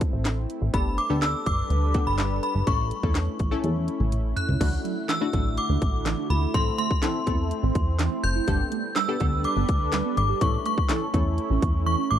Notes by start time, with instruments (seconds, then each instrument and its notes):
Already playing: synth stab A3 C4 E4 A4, analog synth pad A3 C4 E4
0.01 kick, closed hi-hat
0.13 analog synth bass A1
0.25 snare, clap, closed hi-hat
0.50 closed hi-hat
0.62 analog synth bass A1
0.73 analog synth bass G1, analog synth pad G3 D4 A4 B4, synth stab B3 D4 G4 A4, synth bell B5, kick, closed hi-hat
0.98 synth bell D6, closed hi-hat
1.10 analog synth bass D2, synth stab B3 D4 G4 A4
1.22 synth bell E6, snare, clap, closed hi-hat
1.46 analog synth bass G1, synth bell D6, kick, closed hi-hat
1.70 analog synth bass D2, closed hi-hat
1.94 synth stab B3 D4 G4 A4, kick, closed hi-hat
2.07 analog synth bass G1, synth bell B5
2.18 snare, clap, closed hi-hat
2.43 synth bell B5, closed hi-hat
2.55 analog synth bass G1
2.67 analog synth bass A1, synth stab A3 C#4 E4 A4, analog synth pad A3 C#4 E4, synth bell C#6, kick, closed hi-hat
2.91 closed hi-hat
3.03 analog synth bass E2, synth stab A3 C#4 E4 A4, kick
3.15 snare, clap, closed hi-hat
3.39 analog synth bass A1, kick, closed hi-hat
3.51 synth stab A3 C#4 E4 A4
3.64 analog synth bass E2, closed hi-hat, high tom
3.76 high tom
3.88 closed hi-hat
4.00 analog synth bass A1, mid tom
4.12 closed hi-hat, mid tom
4.37 synth bell F#6, closed hi-hat, floor tom
4.48 analog synth bass C#2, floor tom
4.60 analog synth bass D2, analog synth pad D3 A3 E4 F#4, tine electric piano E3, synth stab A3 D4 E4 F#4, kick, closed hi-hat, crash
4.85 tine electric piano F#3, closed hi-hat
5.09 tine electric piano E3, synth bell E6, snare, clap, closed hi-hat
5.21 synth stab A3 D4 E4 F#4
5.33 analog synth bass A1, tine electric piano F#3, synth stab A3 D4 E4 F#4, kick, closed hi-hat
5.57 synth bell D6, closed hi-hat
5.69 analog synth bass D2, tine electric piano D4
5.82 analog synth bass A1, kick, closed hi-hat
6.06 tine electric piano E3, snare, clap, closed hi-hat
6.18 tine electric piano D4
6.30 analog synth bass D2, synth bell B5, closed hi-hat
6.42 tine electric piano E4
6.54 analog synth bass A1, tine electric piano E3, synth stab A3 C4 E4 A4, analog synth pad C4, synth bell C6, kick, closed hi-hat
6.78 tine electric piano A3, synth bell C6, closed hi-hat
6.91 kick
7.02 tine electric piano E3, synth stab A3 C4 E4 A4, snare, clap, closed hi-hat
7.27 analog synth bass E2, synth stab A3 C4 E4 A4, tine electric piano A3, kick, closed hi-hat
7.51 closed hi-hat
7.63 analog synth bass A1, tine electric piano C4
7.75 analog synth bass E2, kick, closed hi-hat
7.99 tine electric piano E3, snare, clap, closed hi-hat
8.12 tine electric piano C4
8.23 analog synth bass F#1, synth bell G6, closed hi-hat
8.36 tine electric piano E4
8.48 analog synth bass G1, tine electric piano G3, analog synth pad G3 D4 A4 B4, synth stab B3 D4 G4 A4, kick, closed hi-hat
8.72 tine electric piano A3, closed hi-hat
8.95 tine electric piano G3, synth bell E6, snare, clap, closed hi-hat
9.08 synth stab B3 D4 G4 A4
9.20 analog synth bass D2, tine electric piano A3, synth stab B3 D4 G4 A4, kick, closed hi-hat
9.44 synth bell D6, closed hi-hat
9.56 analog synth bass G1, tine electric piano B3
9.69 analog synth bass D2, kick, closed hi-hat
9.92 tine electric piano G3, snare, clap, closed hi-hat
10.05 tine electric piano B3
10.17 analog synth bass G#1, synth bell D6, closed hi-hat
10.29 tine electric piano G4
10.41 analog synth bass A1, tine electric piano E3, synth stab A3 C#4 E4 A4, analog synth pad A3 C#4 E4, synth bell C#6, kick, closed hi-hat
10.66 tine electric piano A3, synth bell C#6, closed hi-hat
10.78 kick
10.89 tine electric piano E3, synth stab A3 C#4 E4 A4, snare, clap, closed hi-hat
11.14 analog synth bass E2, synth stab A3 C#4 E4 A4, tine electric piano A3, kick, closed hi-hat
11.38 closed hi-hat
11.50 analog synth bass A1, tine electric piano C#4
11.62 analog synth bass E2, kick, closed hi-hat
11.86 tine electric piano E3, synth bell C#6
11.99 tine electric piano C#4
12.11 analog synth bass A1, synth bell D6